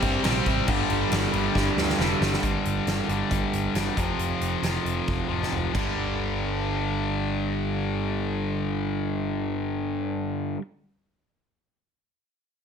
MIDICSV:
0, 0, Header, 1, 6, 480
1, 0, Start_track
1, 0, Tempo, 438917
1, 741, Time_signature, 4, 2, 24, 8
1, 4585, Tempo, 444444
1, 13709, End_track
2, 0, Start_track
2, 0, Title_t, "Distorted electric guitar"
2, 0, Program_c, 0, 30
2, 0, Note_on_c, 0, 48, 92
2, 0, Note_on_c, 0, 55, 97
2, 0, Note_on_c, 0, 60, 108
2, 723, Note_off_c, 0, 48, 0
2, 745, Note_off_c, 0, 60, 0
2, 768, Note_off_c, 0, 55, 0
2, 13709, End_track
3, 0, Start_track
3, 0, Title_t, "Distorted electric guitar"
3, 0, Program_c, 1, 30
3, 0, Note_on_c, 1, 48, 77
3, 0, Note_on_c, 1, 55, 88
3, 0, Note_on_c, 1, 60, 99
3, 242, Note_off_c, 1, 48, 0
3, 245, Note_off_c, 1, 60, 0
3, 255, Note_on_c, 1, 48, 86
3, 273, Note_off_c, 1, 55, 0
3, 277, Note_on_c, 1, 55, 85
3, 296, Note_on_c, 1, 60, 95
3, 723, Note_off_c, 1, 48, 0
3, 726, Note_on_c, 1, 43, 93
3, 744, Note_off_c, 1, 60, 0
3, 749, Note_on_c, 1, 50, 101
3, 762, Note_off_c, 1, 55, 0
3, 766, Note_on_c, 1, 55, 96
3, 1431, Note_off_c, 1, 55, 0
3, 1437, Note_off_c, 1, 43, 0
3, 1444, Note_on_c, 1, 55, 102
3, 1448, Note_off_c, 1, 50, 0
3, 1467, Note_on_c, 1, 50, 79
3, 1479, Note_on_c, 1, 43, 71
3, 2150, Note_off_c, 1, 43, 0
3, 2156, Note_off_c, 1, 55, 0
3, 2163, Note_on_c, 1, 43, 84
3, 2167, Note_off_c, 1, 50, 0
3, 2184, Note_on_c, 1, 50, 89
3, 2200, Note_on_c, 1, 55, 101
3, 2629, Note_off_c, 1, 43, 0
3, 2642, Note_on_c, 1, 43, 81
3, 2647, Note_off_c, 1, 50, 0
3, 2654, Note_off_c, 1, 55, 0
3, 2664, Note_on_c, 1, 50, 96
3, 2681, Note_on_c, 1, 55, 103
3, 3357, Note_off_c, 1, 43, 0
3, 3359, Note_off_c, 1, 55, 0
3, 3368, Note_off_c, 1, 50, 0
3, 3372, Note_on_c, 1, 55, 85
3, 3392, Note_on_c, 1, 50, 77
3, 3410, Note_on_c, 1, 43, 66
3, 4082, Note_off_c, 1, 43, 0
3, 4085, Note_off_c, 1, 55, 0
3, 4094, Note_off_c, 1, 50, 0
3, 4095, Note_on_c, 1, 43, 76
3, 4116, Note_on_c, 1, 50, 76
3, 4133, Note_on_c, 1, 55, 80
3, 4324, Note_off_c, 1, 43, 0
3, 4328, Note_on_c, 1, 41, 89
3, 4336, Note_off_c, 1, 50, 0
3, 4345, Note_off_c, 1, 55, 0
3, 4355, Note_on_c, 1, 48, 94
3, 4370, Note_on_c, 1, 53, 105
3, 5033, Note_off_c, 1, 41, 0
3, 5046, Note_on_c, 1, 41, 77
3, 5055, Note_off_c, 1, 48, 0
3, 5062, Note_off_c, 1, 53, 0
3, 5068, Note_on_c, 1, 48, 82
3, 5086, Note_on_c, 1, 53, 82
3, 5753, Note_off_c, 1, 53, 0
3, 5759, Note_off_c, 1, 41, 0
3, 5765, Note_on_c, 1, 53, 95
3, 5770, Note_off_c, 1, 48, 0
3, 5790, Note_on_c, 1, 48, 73
3, 5805, Note_on_c, 1, 41, 78
3, 6238, Note_off_c, 1, 53, 0
3, 6251, Note_off_c, 1, 48, 0
3, 6256, Note_off_c, 1, 41, 0
3, 6260, Note_on_c, 1, 43, 92
3, 6278, Note_on_c, 1, 50, 99
3, 6303, Note_on_c, 1, 55, 98
3, 11478, Note_off_c, 1, 43, 0
3, 11496, Note_off_c, 1, 50, 0
3, 11521, Note_off_c, 1, 55, 0
3, 13709, End_track
4, 0, Start_track
4, 0, Title_t, "Overdriven electric guitar"
4, 0, Program_c, 2, 29
4, 22, Note_on_c, 2, 48, 95
4, 33, Note_on_c, 2, 55, 97
4, 37, Note_on_c, 2, 60, 105
4, 252, Note_off_c, 2, 48, 0
4, 263, Note_off_c, 2, 60, 0
4, 265, Note_on_c, 2, 48, 114
4, 266, Note_off_c, 2, 55, 0
4, 270, Note_on_c, 2, 55, 105
4, 276, Note_on_c, 2, 60, 117
4, 489, Note_off_c, 2, 48, 0
4, 502, Note_off_c, 2, 60, 0
4, 502, Note_on_c, 2, 48, 83
4, 504, Note_off_c, 2, 55, 0
4, 508, Note_on_c, 2, 55, 90
4, 515, Note_on_c, 2, 60, 108
4, 727, Note_off_c, 2, 48, 0
4, 734, Note_off_c, 2, 60, 0
4, 744, Note_on_c, 2, 43, 96
4, 751, Note_on_c, 2, 50, 111
4, 753, Note_off_c, 2, 55, 0
4, 758, Note_on_c, 2, 55, 107
4, 967, Note_off_c, 2, 43, 0
4, 972, Note_off_c, 2, 50, 0
4, 980, Note_on_c, 2, 43, 91
4, 981, Note_off_c, 2, 55, 0
4, 985, Note_on_c, 2, 50, 84
4, 994, Note_on_c, 2, 55, 84
4, 1195, Note_off_c, 2, 43, 0
4, 1203, Note_off_c, 2, 50, 0
4, 1208, Note_off_c, 2, 55, 0
4, 1208, Note_on_c, 2, 43, 110
4, 1216, Note_on_c, 2, 50, 127
4, 1222, Note_on_c, 2, 55, 122
4, 1434, Note_off_c, 2, 43, 0
4, 1445, Note_off_c, 2, 50, 0
4, 1447, Note_on_c, 2, 43, 83
4, 1448, Note_off_c, 2, 55, 0
4, 1458, Note_on_c, 2, 50, 98
4, 1461, Note_on_c, 2, 55, 97
4, 1669, Note_off_c, 2, 43, 0
4, 1679, Note_off_c, 2, 50, 0
4, 1682, Note_on_c, 2, 43, 102
4, 1685, Note_off_c, 2, 55, 0
4, 1693, Note_on_c, 2, 50, 100
4, 1698, Note_on_c, 2, 55, 116
4, 1910, Note_off_c, 2, 43, 0
4, 1920, Note_off_c, 2, 50, 0
4, 1923, Note_on_c, 2, 43, 90
4, 1924, Note_off_c, 2, 55, 0
4, 1934, Note_on_c, 2, 50, 95
4, 1937, Note_on_c, 2, 55, 104
4, 2154, Note_off_c, 2, 43, 0
4, 2163, Note_off_c, 2, 50, 0
4, 2167, Note_on_c, 2, 43, 102
4, 2168, Note_off_c, 2, 55, 0
4, 2176, Note_on_c, 2, 50, 115
4, 2181, Note_on_c, 2, 55, 120
4, 2394, Note_off_c, 2, 43, 0
4, 2401, Note_off_c, 2, 50, 0
4, 2407, Note_on_c, 2, 43, 83
4, 2408, Note_off_c, 2, 55, 0
4, 2414, Note_on_c, 2, 50, 90
4, 2421, Note_on_c, 2, 55, 98
4, 2638, Note_off_c, 2, 43, 0
4, 2642, Note_off_c, 2, 50, 0
4, 2645, Note_off_c, 2, 55, 0
4, 13709, End_track
5, 0, Start_track
5, 0, Title_t, "Picked electric bass"
5, 0, Program_c, 3, 34
5, 28, Note_on_c, 3, 43, 94
5, 177, Note_off_c, 3, 43, 0
5, 279, Note_on_c, 3, 34, 98
5, 424, Note_off_c, 3, 34, 0
5, 503, Note_on_c, 3, 32, 105
5, 653, Note_off_c, 3, 32, 0
5, 741, Note_on_c, 3, 31, 107
5, 891, Note_off_c, 3, 31, 0
5, 988, Note_on_c, 3, 31, 98
5, 1136, Note_off_c, 3, 31, 0
5, 1222, Note_on_c, 3, 31, 94
5, 1372, Note_off_c, 3, 31, 0
5, 1457, Note_on_c, 3, 31, 97
5, 1608, Note_off_c, 3, 31, 0
5, 1698, Note_on_c, 3, 31, 104
5, 1849, Note_off_c, 3, 31, 0
5, 1931, Note_on_c, 3, 38, 100
5, 2084, Note_off_c, 3, 38, 0
5, 2172, Note_on_c, 3, 29, 99
5, 2325, Note_off_c, 3, 29, 0
5, 2414, Note_on_c, 3, 31, 97
5, 2566, Note_off_c, 3, 31, 0
5, 2655, Note_on_c, 3, 31, 95
5, 2802, Note_off_c, 3, 31, 0
5, 2900, Note_on_c, 3, 31, 88
5, 3046, Note_off_c, 3, 31, 0
5, 3128, Note_on_c, 3, 31, 83
5, 3278, Note_off_c, 3, 31, 0
5, 3368, Note_on_c, 3, 31, 83
5, 3517, Note_off_c, 3, 31, 0
5, 3613, Note_on_c, 3, 31, 96
5, 3762, Note_off_c, 3, 31, 0
5, 3860, Note_on_c, 3, 31, 85
5, 4007, Note_off_c, 3, 31, 0
5, 4094, Note_on_c, 3, 31, 95
5, 4243, Note_off_c, 3, 31, 0
5, 4343, Note_on_c, 3, 29, 87
5, 4490, Note_off_c, 3, 29, 0
5, 4576, Note_on_c, 3, 29, 93
5, 4724, Note_off_c, 3, 29, 0
5, 4814, Note_on_c, 3, 29, 85
5, 4962, Note_off_c, 3, 29, 0
5, 5049, Note_on_c, 3, 29, 78
5, 5199, Note_off_c, 3, 29, 0
5, 5294, Note_on_c, 3, 29, 76
5, 5442, Note_off_c, 3, 29, 0
5, 5543, Note_on_c, 3, 29, 94
5, 5688, Note_off_c, 3, 29, 0
5, 5772, Note_on_c, 3, 29, 84
5, 5920, Note_off_c, 3, 29, 0
5, 6021, Note_on_c, 3, 29, 82
5, 6167, Note_off_c, 3, 29, 0
5, 6263, Note_on_c, 3, 31, 91
5, 11438, Note_off_c, 3, 31, 0
5, 13709, End_track
6, 0, Start_track
6, 0, Title_t, "Drums"
6, 25, Note_on_c, 9, 49, 77
6, 28, Note_on_c, 9, 36, 102
6, 135, Note_off_c, 9, 49, 0
6, 138, Note_off_c, 9, 36, 0
6, 261, Note_on_c, 9, 49, 92
6, 274, Note_on_c, 9, 38, 117
6, 370, Note_off_c, 9, 49, 0
6, 383, Note_off_c, 9, 38, 0
6, 505, Note_on_c, 9, 49, 63
6, 506, Note_on_c, 9, 36, 96
6, 614, Note_off_c, 9, 49, 0
6, 615, Note_off_c, 9, 36, 0
6, 740, Note_on_c, 9, 49, 92
6, 743, Note_on_c, 9, 36, 121
6, 850, Note_off_c, 9, 49, 0
6, 852, Note_off_c, 9, 36, 0
6, 982, Note_on_c, 9, 49, 68
6, 1091, Note_off_c, 9, 49, 0
6, 1220, Note_on_c, 9, 49, 93
6, 1233, Note_on_c, 9, 38, 113
6, 1330, Note_off_c, 9, 49, 0
6, 1343, Note_off_c, 9, 38, 0
6, 1460, Note_on_c, 9, 49, 65
6, 1569, Note_off_c, 9, 49, 0
6, 1698, Note_on_c, 9, 36, 86
6, 1715, Note_on_c, 9, 38, 70
6, 1808, Note_off_c, 9, 36, 0
6, 1824, Note_off_c, 9, 38, 0
6, 1949, Note_on_c, 9, 38, 92
6, 2058, Note_off_c, 9, 38, 0
6, 2073, Note_on_c, 9, 38, 75
6, 2182, Note_off_c, 9, 38, 0
6, 2190, Note_on_c, 9, 38, 91
6, 2300, Note_off_c, 9, 38, 0
6, 2428, Note_on_c, 9, 38, 106
6, 2538, Note_off_c, 9, 38, 0
6, 2555, Note_on_c, 9, 38, 104
6, 2658, Note_on_c, 9, 36, 115
6, 2661, Note_on_c, 9, 42, 84
6, 2664, Note_off_c, 9, 38, 0
6, 2767, Note_off_c, 9, 36, 0
6, 2770, Note_off_c, 9, 42, 0
6, 2902, Note_on_c, 9, 42, 63
6, 3011, Note_off_c, 9, 42, 0
6, 3138, Note_on_c, 9, 42, 78
6, 3151, Note_on_c, 9, 38, 106
6, 3247, Note_off_c, 9, 42, 0
6, 3260, Note_off_c, 9, 38, 0
6, 3381, Note_on_c, 9, 42, 57
6, 3490, Note_off_c, 9, 42, 0
6, 3620, Note_on_c, 9, 36, 106
6, 3620, Note_on_c, 9, 42, 84
6, 3729, Note_off_c, 9, 36, 0
6, 3730, Note_off_c, 9, 42, 0
6, 3864, Note_on_c, 9, 42, 73
6, 3973, Note_off_c, 9, 42, 0
6, 4102, Note_on_c, 9, 42, 93
6, 4115, Note_on_c, 9, 38, 102
6, 4211, Note_off_c, 9, 42, 0
6, 4224, Note_off_c, 9, 38, 0
6, 4343, Note_on_c, 9, 36, 103
6, 4348, Note_on_c, 9, 42, 60
6, 4452, Note_off_c, 9, 36, 0
6, 4457, Note_off_c, 9, 42, 0
6, 4584, Note_on_c, 9, 42, 78
6, 4692, Note_off_c, 9, 42, 0
6, 4824, Note_on_c, 9, 42, 58
6, 4932, Note_off_c, 9, 42, 0
6, 5059, Note_on_c, 9, 42, 75
6, 5072, Note_on_c, 9, 38, 102
6, 5167, Note_off_c, 9, 42, 0
6, 5180, Note_off_c, 9, 38, 0
6, 5306, Note_on_c, 9, 42, 50
6, 5414, Note_off_c, 9, 42, 0
6, 5541, Note_on_c, 9, 48, 54
6, 5544, Note_on_c, 9, 36, 110
6, 5649, Note_off_c, 9, 48, 0
6, 5652, Note_off_c, 9, 36, 0
6, 5668, Note_on_c, 9, 48, 52
6, 5776, Note_off_c, 9, 48, 0
6, 5921, Note_on_c, 9, 38, 63
6, 6025, Note_on_c, 9, 45, 72
6, 6029, Note_off_c, 9, 38, 0
6, 6133, Note_off_c, 9, 45, 0
6, 6264, Note_on_c, 9, 36, 92
6, 6266, Note_on_c, 9, 57, 82
6, 6372, Note_off_c, 9, 36, 0
6, 6374, Note_off_c, 9, 57, 0
6, 13709, End_track
0, 0, End_of_file